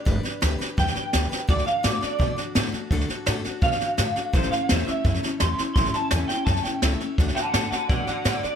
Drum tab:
HH |----p-------p---|----p-------p---|----p-------p---|----p-------p---|
SD |o-o-o-o-ooo-o-o-|ooo-o-o-o-o-o-o-|ooo-o-o-ooo-o-o-|ooo-o-o-ooo-o-o-|
BD |o-------o-------|o-------o-------|o-------o-------|o-------o-------|

HH |----p-------p---|----p-------p---|
SD |ooo-o-o-ooo-o-o-|ooo-o-o-o-o-o-o-|
BD |o-------o-------|o-------o-------|